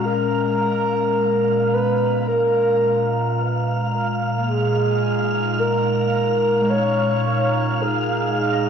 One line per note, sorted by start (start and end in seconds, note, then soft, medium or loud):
0.00 8.69 A#2 medium
0.00 8.69 G#3 medium
0.00 4.96 C#4 medium
0.00 5.20 F5 medium
0.00 8.69 F5 medium
0.00 8.69 A#5 medium
0.00 8.69 F6 medium
0.05 1.75 A#4 loud
1.73 2.29 B4 loud
2.27 3.38 A#4 loud
4.38 6.82 A#3 soft
4.47 5.61 G#4 loud
4.62 8.69 D#4 medium
5.59 6.71 A#4 loud
6.62 8.69 G#3 soft
6.69 7.83 C#5 loud
7.82 8.69 G#4 loud
8.53 8.69 D#5 medium